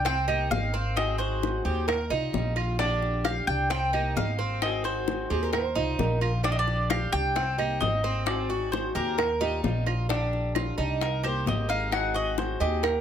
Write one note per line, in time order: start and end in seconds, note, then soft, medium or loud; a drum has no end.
0.00 0.47 C2 medium
0.05 0.27 C4 medium
0.05 0.48 G5 loud
0.05 muted steel-string acoustic guitar stroke medium
0.05 high bongo medium
0.28 0.49 D#3 medium
0.28 0.50 A#3 medium
0.28 0.50 C4 medium
0.28 0.72 D#4 medium
0.28 0.50 G4 medium
0.28 high bongo soft
0.28 claves medium
0.50 1.59 G#1 medium
0.50 0.95 D#3 medium
0.50 0.96 A#3 medium
0.50 0.95 C4 soft
0.50 0.96 G4 medium
0.50 0.98 F5 loud
0.50 high bongo soft
0.50 low bongo medium
0.74 1.18 C4 medium
0.74 high bongo soft
0.96 1.64 D#3 medium
0.96 1.64 F#3 medium
0.96 1.64 C4 medium
0.96 1.65 D#4 medium
0.96 1.64 G#4 medium
0.96 1.18 D#5 medium
0.96 high bongo medium
0.96 claves medium
1.18 1.64 F#4 medium
1.18 1.84 C5 medium
1.18 high bongo soft
1.43 high bongo medium
1.65 2.08 D#2 medium
1.65 1.87 F#3 medium
1.65 1.88 C4 medium
1.65 1.87 D#4 medium
1.65 1.87 G4 medium
1.65 1.87 G#4 medium
1.88 2.10 A#4 medium
1.88 muted steel-string acoustic guitar stroke medium
1.88 high bongo medium
1.88 claves medium
2.10 2.32 C2 medium
2.10 2.34 G3 medium
2.10 2.55 D#4 medium
2.10 2.33 D#4 medium
2.10 2.33 F4 medium
2.10 high bongo soft
2.33 3.41 A#1 medium
2.33 2.79 D#3 soft
2.33 2.79 G3 soft
2.33 2.79 D#4 medium
2.33 2.79 F4 medium
2.33 high bongo soft
2.33 low bongo medium
2.56 2.78 F4 medium
2.56 high bongo soft
2.56 claves medium
2.79 3.47 D3 medium
2.79 3.47 G3 medium
2.79 3.24 D4 medium
2.79 3.47 D4 medium
2.79 3.47 G4 medium
2.79 3.26 D5 medium
2.79 high bongo medium
3.02 high bongo soft
3.25 3.69 G4 medium
3.25 3.46 F5 medium
3.25 high bongo medium
3.25 claves medium
3.47 4.12 C2 medium
3.47 3.71 G3 medium
3.47 3.70 D4 medium
3.47 3.70 G4 medium
3.47 3.69 G5 loud
3.70 3.93 C4 medium
3.70 4.16 G5 loud
3.70 muted steel-string acoustic guitar stroke medium
3.70 high bongo medium
3.93 4.15 D#3 medium
3.93 4.16 A#3 medium
3.93 4.16 C4 medium
3.93 4.38 D#4 medium
3.93 4.15 G4 medium
3.93 high bongo soft
3.93 claves medium
4.16 5.24 G#1 medium
4.16 4.61 D#3 soft
4.16 4.62 A#3 soft
4.16 4.62 C4 soft
4.16 4.62 G4 medium
4.16 4.59 F5 loud
4.16 high bongo soft
4.16 low bongo medium
4.39 4.83 C4 medium
4.39 high bongo soft
4.62 5.30 D#3 medium
4.62 5.30 F#3 medium
4.62 5.30 C4 medium
4.62 5.30 D#4 medium
4.62 5.30 G#4 medium
4.62 4.84 D#5 medium
4.62 high bongo medium
4.62 claves medium
4.84 5.29 F#4 medium
4.84 5.49 C5 medium
4.84 high bongo soft
5.08 high bongo medium
5.30 5.73 D#2 medium
5.30 5.53 F#3 medium
5.30 5.53 C4 medium
5.30 5.53 D#4 medium
5.30 5.52 G4 medium
5.30 5.43 G#4 medium
5.30 5.53 G#4 medium
5.43 5.54 A#4 loud
5.53 5.75 A#4 medium
5.53 5.99 C5 loud
5.53 muted steel-string acoustic guitar stroke medium
5.53 high bongo medium
5.53 claves medium
5.75 5.97 C2 medium
5.75 5.98 G3 medium
5.75 6.20 D#4 loud
5.75 5.99 D#4 medium
5.75 5.98 F4 medium
5.75 high bongo soft
5.99 7.07 A#1 medium
5.99 6.43 D#3 soft
5.99 6.43 G3 soft
5.99 6.44 D#4 soft
5.99 6.44 F4 medium
5.99 6.31 A#4 medium
5.99 high bongo soft
5.99 low bongo medium
6.21 6.43 F4 medium
6.21 high bongo soft
6.21 claves medium
6.43 7.12 D3 medium
6.43 7.12 G3 medium
6.43 6.89 D4 medium
6.43 7.12 D4 medium
6.43 7.11 G4 medium
6.43 6.51 D5 medium
6.43 high bongo medium
6.52 6.58 D#5 medium
6.59 6.88 D5 medium
6.67 high bongo soft
6.90 7.34 G4 medium
6.90 7.11 F5 medium
6.90 high bongo medium
6.90 claves medium
7.12 7.77 C2 medium
7.12 7.35 G3 medium
7.12 7.35 D4 medium
7.12 7.35 G4 medium
7.12 7.77 G5 loud
7.35 7.58 C4 medium
7.35 muted steel-string acoustic guitar stroke medium
7.35 high bongo medium
7.58 7.80 D#3 medium
7.58 7.80 A#3 medium
7.58 7.81 C4 medium
7.58 8.03 D#4 medium
7.58 7.80 G4 medium
7.58 high bongo soft
7.58 claves medium
7.80 8.89 G#1 medium
7.80 8.25 D#3 medium
7.80 8.26 A#3 medium
7.80 8.26 C4 medium
7.80 8.27 G4 medium
7.80 8.26 D#5 medium
7.80 high bongo soft
7.80 low bongo medium
8.04 8.48 C4 medium
8.04 high bongo soft
8.26 8.94 D#3 medium
8.26 8.94 F#3 medium
8.26 8.95 C4 medium
8.26 8.94 D#4 medium
8.26 8.94 G#4 medium
8.26 8.72 D5 medium
8.26 high bongo medium
8.26 claves medium
8.50 8.94 F#4 medium
8.50 high bongo soft
8.72 8.94 C5 medium
8.72 high bongo medium
8.95 9.60 D#2 medium
8.95 9.17 F#3 medium
8.95 9.17 C4 medium
8.95 9.17 D#4 medium
8.95 9.17 G4 medium
8.95 9.17 G#4 medium
8.95 9.60 A#4 medium
9.18 9.40 A#4 medium
9.18 muted steel-string acoustic guitar stroke medium
9.18 high bongo medium
9.18 claves medium
9.40 9.63 G3 medium
9.40 9.63 D#4 medium
9.40 9.85 D#4 medium
9.40 9.63 F4 medium
9.40 9.63 G4 loud
9.40 high bongo soft
9.63 10.72 A#1 medium
9.63 10.08 D#3 soft
9.63 10.09 G3 medium
9.63 10.09 D#4 medium
9.63 10.07 F4 loud
9.63 10.09 F4 medium
9.63 high bongo soft
9.63 low bongo medium
9.86 10.09 F4 medium
9.86 high bongo soft
9.86 claves medium
10.09 10.77 D3 medium
10.09 10.77 G3 medium
10.09 10.54 D4 medium
10.09 10.77 D4 medium
10.09 10.76 G4 medium
10.09 high bongo medium
10.33 high bongo soft
10.55 10.77 F4 medium
10.55 high bongo medium
10.55 claves medium
10.77 11.42 C2 loud
10.77 11.00 G3 medium
10.77 11.00 D4 medium
10.77 11.22 D#4 medium
10.77 11.00 G4 medium
11.01 11.24 A#4 medium
11.01 muted steel-string acoustic guitar stroke medium
11.01 high bongo medium
11.23 11.45 D#3 medium
11.23 11.46 A#3 medium
11.23 11.46 C4 medium
11.23 11.68 G4 medium
11.23 11.46 G4 medium
11.23 11.46 C5 medium
11.23 high bongo soft
11.23 claves medium
11.46 12.54 G#1 medium
11.46 11.90 D#3 soft
11.46 11.92 A#3 medium
11.46 11.91 C4 soft
11.46 11.92 G4 medium
11.46 11.70 D#5 medium
11.46 high bongo soft
11.46 low bongo medium
11.69 12.13 D#4 medium
11.69 11.92 F5 medium
11.69 high bongo soft
11.91 12.59 D#3 medium
11.91 12.59 F#3 medium
11.91 12.60 C4 medium
11.91 12.60 D#4 medium
11.91 12.59 G#4 medium
11.91 12.15 F#5 medium
11.91 high bongo medium
11.91 claves medium
12.14 12.59 F#4 medium
12.14 12.37 D#5 medium
12.14 high bongo soft
12.38 12.60 C5 medium
12.38 high bongo medium
12.60 13.01 D#2 medium
12.60 12.83 F#3 soft
12.60 12.83 C4 medium
12.60 12.83 D#4 medium
12.60 13.01 G4 medium
12.60 12.82 G#4 medium
12.60 12.83 D#5 medium
12.83 13.01 A#4 medium
12.83 muted steel-string acoustic guitar stroke medium
12.83 high bongo medium
12.83 claves medium